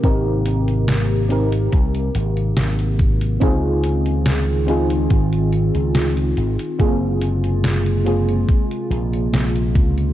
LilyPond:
<<
  \new Staff \with { instrumentName = "FM electric piano" } { \time 4/4 \key aes \major \tempo 4 = 71 <c' ees' g' bes'>8 r4 <c' ees' g' bes'>2~ <c' ees' g' bes'>8 | <c' ees' f' aes'>4. <c' ees' f' aes'>2~ <c' ees' f' aes'>8 | <bes c' f' aes'>8 r4 <bes c' f' aes'>2~ <bes c' f' aes'>8 | }
  \new Staff \with { instrumentName = "Ambient pad" } { \time 4/4 \key aes \major <c bes g'>1 | <ees c' f'>1 | <c aes bes f'>1 | }
  \new Staff \with { instrumentName = "Slap bass" } { \clef bass \time 4/4 \key aes \major aes,,2 c,8 aes,,8 aes,,4 | des,2 aes,,8. des,8. aes,,16 r16 | ges,,2 r8 bes,,8 bes,,8 des,8 | }
  \new DrumStaff \with { instrumentName = "Drums" } \drummode { \time 4/4 <hh bd>8 hh16 hh16 <hh sn>8 hh16 hh16 <hh bd>16 hh16 hh16 hh16 <hh sn>16 hh16 <hh bd>16 hh16 | <hh bd>8 hh16 hh16 <hh sn>8 hh16 hh16 <hh bd>16 hh16 hh16 hh16 <hh sn>16 hh16 hh16 hh16 | <hh bd>8 hh16 hh16 <hh sn>16 hh16 hh16 hh16 <hh bd>16 hh16 hh16 hh16 <hh sn>16 hh16 <hh bd>16 hh16 | }
>>